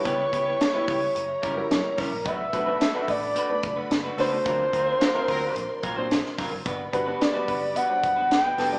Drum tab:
HH |x-x-x-o-x-x-x-o-|x-x-x-o-x-x-x-o-|x-x-x-o-x-x-x-o-|x-x-x-o-x-x-x-o-|
SD |----o-------o-o-|----o-------o-o-|----o-------ooo-|----o-------o-o-|
BD |o-o---o---o---o-|o-o---o---o-----|o-o---o---o---o-|o-o---o---o-----|